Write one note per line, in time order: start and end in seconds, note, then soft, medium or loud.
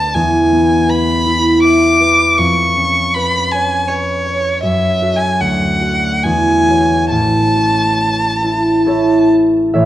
0.00 0.18 D2 soft
0.00 0.18 D4 soft
0.00 0.87 B4 soft
0.00 0.18 D5 soft
0.00 0.16 A5 medium
0.15 2.41 E2 soft
0.15 0.91 G#5 medium
0.52 4.42 B3 soft
0.88 1.99 B4 soft
0.88 1.62 B5 medium
1.26 2.41 E4 soft
1.63 2.41 E5 soft
1.63 2.39 D6 medium
2.00 3.14 B4 soft
2.37 4.67 F2 soft
2.37 3.15 C#6 medium
2.76 5.45 C#4 soft
3.14 3.89 B4 soft
3.14 3.53 B5 medium
3.52 4.25 C#5 soft
3.52 3.90 G#5 medium
3.88 4.68 B4 soft
3.88 4.63 C#5 medium
4.27 5.45 C#5 soft
4.63 5.44 F#2 soft
4.63 5.17 E5 medium
5.02 5.80 F#4 soft
5.02 5.44 A4 soft
5.16 5.42 G#5 medium
5.41 6.28 D2 soft
5.41 6.24 F#5 medium
5.81 6.67 F#4 soft
5.81 7.16 D5 soft
6.23 7.17 E2 soft
6.23 7.11 G#5 medium
6.69 7.16 F#4 soft
6.69 8.00 C#5 soft
7.11 9.73 A1 soft
7.11 9.28 A5 medium
7.56 9.85 C#4 soft
8.01 8.86 C#5 soft
8.44 8.85 E4 soft
8.86 9.85 E4 medium
8.86 9.73 A4 medium
8.86 9.31 C#5 medium
8.90 9.72 E5 soft
9.32 9.74 C#5 soft
9.73 9.85 A1 medium
9.73 9.85 A4 medium
9.73 9.85 C#5 medium
9.73 9.85 E5 medium